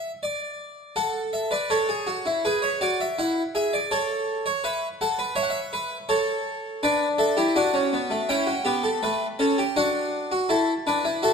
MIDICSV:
0, 0, Header, 1, 2, 480
1, 0, Start_track
1, 0, Tempo, 732601
1, 630, Time_signature, 4, 2, 24, 8
1, 7427, End_track
2, 0, Start_track
2, 0, Title_t, "Harpsichord"
2, 0, Program_c, 0, 6
2, 0, Note_on_c, 0, 76, 70
2, 66, Note_off_c, 0, 76, 0
2, 150, Note_on_c, 0, 74, 65
2, 615, Note_off_c, 0, 74, 0
2, 629, Note_on_c, 0, 69, 72
2, 629, Note_on_c, 0, 78, 59
2, 778, Note_off_c, 0, 78, 0
2, 872, Note_on_c, 0, 76, 59
2, 978, Note_off_c, 0, 69, 0
2, 987, Note_off_c, 0, 76, 0
2, 989, Note_on_c, 0, 71, 67
2, 992, Note_on_c, 0, 74, 55
2, 1105, Note_off_c, 0, 71, 0
2, 1107, Note_off_c, 0, 74, 0
2, 1115, Note_on_c, 0, 73, 58
2, 1116, Note_on_c, 0, 69, 72
2, 1229, Note_off_c, 0, 69, 0
2, 1237, Note_on_c, 0, 68, 67
2, 1350, Note_off_c, 0, 68, 0
2, 1354, Note_on_c, 0, 66, 68
2, 1469, Note_off_c, 0, 66, 0
2, 1478, Note_on_c, 0, 64, 66
2, 1580, Note_off_c, 0, 73, 0
2, 1592, Note_off_c, 0, 64, 0
2, 1604, Note_on_c, 0, 71, 63
2, 1605, Note_on_c, 0, 68, 77
2, 1716, Note_off_c, 0, 71, 0
2, 1718, Note_on_c, 0, 73, 53
2, 1751, Note_off_c, 0, 68, 0
2, 1833, Note_off_c, 0, 73, 0
2, 1842, Note_on_c, 0, 66, 75
2, 1843, Note_on_c, 0, 74, 63
2, 1956, Note_off_c, 0, 74, 0
2, 1969, Note_on_c, 0, 76, 59
2, 1989, Note_off_c, 0, 66, 0
2, 2079, Note_off_c, 0, 76, 0
2, 2086, Note_on_c, 0, 64, 74
2, 2087, Note_on_c, 0, 78, 61
2, 2232, Note_off_c, 0, 64, 0
2, 2232, Note_off_c, 0, 78, 0
2, 2325, Note_on_c, 0, 68, 69
2, 2327, Note_on_c, 0, 76, 58
2, 2437, Note_off_c, 0, 76, 0
2, 2446, Note_on_c, 0, 74, 60
2, 2471, Note_off_c, 0, 68, 0
2, 2557, Note_off_c, 0, 74, 0
2, 2563, Note_on_c, 0, 73, 59
2, 2564, Note_on_c, 0, 69, 80
2, 2908, Note_off_c, 0, 69, 0
2, 2913, Note_off_c, 0, 73, 0
2, 2921, Note_on_c, 0, 73, 77
2, 3034, Note_off_c, 0, 73, 0
2, 3039, Note_on_c, 0, 71, 75
2, 3041, Note_on_c, 0, 76, 63
2, 3186, Note_off_c, 0, 71, 0
2, 3187, Note_off_c, 0, 76, 0
2, 3284, Note_on_c, 0, 69, 67
2, 3284, Note_on_c, 0, 78, 58
2, 3395, Note_off_c, 0, 69, 0
2, 3399, Note_on_c, 0, 71, 72
2, 3429, Note_off_c, 0, 78, 0
2, 3509, Note_on_c, 0, 73, 84
2, 3509, Note_on_c, 0, 76, 69
2, 3512, Note_off_c, 0, 71, 0
2, 3555, Note_off_c, 0, 76, 0
2, 3555, Note_on_c, 0, 78, 56
2, 3602, Note_off_c, 0, 78, 0
2, 3604, Note_on_c, 0, 76, 66
2, 3659, Note_off_c, 0, 73, 0
2, 3754, Note_on_c, 0, 71, 85
2, 3902, Note_off_c, 0, 71, 0
2, 3981, Note_off_c, 0, 76, 0
2, 3989, Note_on_c, 0, 73, 59
2, 3990, Note_on_c, 0, 69, 77
2, 4458, Note_off_c, 0, 69, 0
2, 4458, Note_off_c, 0, 73, 0
2, 4475, Note_on_c, 0, 62, 80
2, 4476, Note_on_c, 0, 71, 67
2, 4477, Note_on_c, 0, 74, 66
2, 4624, Note_off_c, 0, 71, 0
2, 4625, Note_off_c, 0, 74, 0
2, 4707, Note_on_c, 0, 69, 63
2, 4707, Note_on_c, 0, 76, 63
2, 4824, Note_off_c, 0, 62, 0
2, 4826, Note_off_c, 0, 69, 0
2, 4827, Note_on_c, 0, 67, 62
2, 4830, Note_on_c, 0, 64, 84
2, 4858, Note_off_c, 0, 76, 0
2, 4946, Note_off_c, 0, 67, 0
2, 4948, Note_off_c, 0, 64, 0
2, 4952, Note_on_c, 0, 66, 69
2, 4954, Note_on_c, 0, 62, 79
2, 4954, Note_on_c, 0, 78, 65
2, 5069, Note_off_c, 0, 62, 0
2, 5070, Note_on_c, 0, 61, 76
2, 5187, Note_off_c, 0, 61, 0
2, 5197, Note_on_c, 0, 59, 73
2, 5309, Note_on_c, 0, 57, 76
2, 5310, Note_off_c, 0, 59, 0
2, 5416, Note_off_c, 0, 66, 0
2, 5417, Note_off_c, 0, 78, 0
2, 5426, Note_off_c, 0, 57, 0
2, 5431, Note_on_c, 0, 79, 72
2, 5433, Note_on_c, 0, 61, 86
2, 5435, Note_on_c, 0, 64, 68
2, 5546, Note_on_c, 0, 66, 61
2, 5549, Note_off_c, 0, 64, 0
2, 5581, Note_off_c, 0, 61, 0
2, 5664, Note_off_c, 0, 66, 0
2, 5665, Note_on_c, 0, 67, 69
2, 5671, Note_on_c, 0, 59, 81
2, 5784, Note_off_c, 0, 67, 0
2, 5788, Note_on_c, 0, 69, 63
2, 5820, Note_off_c, 0, 59, 0
2, 5906, Note_off_c, 0, 69, 0
2, 5915, Note_on_c, 0, 57, 77
2, 5915, Note_on_c, 0, 71, 64
2, 6062, Note_off_c, 0, 57, 0
2, 6062, Note_off_c, 0, 71, 0
2, 6153, Note_on_c, 0, 69, 64
2, 6155, Note_on_c, 0, 61, 71
2, 6268, Note_off_c, 0, 69, 0
2, 6278, Note_on_c, 0, 67, 62
2, 6302, Note_off_c, 0, 61, 0
2, 6364, Note_off_c, 0, 79, 0
2, 6391, Note_off_c, 0, 67, 0
2, 6397, Note_on_c, 0, 62, 78
2, 6397, Note_on_c, 0, 78, 66
2, 6398, Note_on_c, 0, 66, 67
2, 6743, Note_off_c, 0, 62, 0
2, 6751, Note_off_c, 0, 66, 0
2, 6759, Note_on_c, 0, 66, 81
2, 6871, Note_off_c, 0, 66, 0
2, 6874, Note_on_c, 0, 64, 77
2, 6875, Note_on_c, 0, 69, 67
2, 7022, Note_off_c, 0, 64, 0
2, 7023, Note_off_c, 0, 69, 0
2, 7120, Note_on_c, 0, 62, 75
2, 7120, Note_on_c, 0, 71, 61
2, 7232, Note_off_c, 0, 62, 0
2, 7236, Note_on_c, 0, 64, 72
2, 7267, Note_off_c, 0, 71, 0
2, 7329, Note_off_c, 0, 78, 0
2, 7350, Note_off_c, 0, 64, 0
2, 7355, Note_on_c, 0, 66, 83
2, 7360, Note_on_c, 0, 76, 72
2, 7361, Note_on_c, 0, 69, 70
2, 7427, Note_off_c, 0, 66, 0
2, 7427, Note_off_c, 0, 69, 0
2, 7427, Note_off_c, 0, 76, 0
2, 7427, End_track
0, 0, End_of_file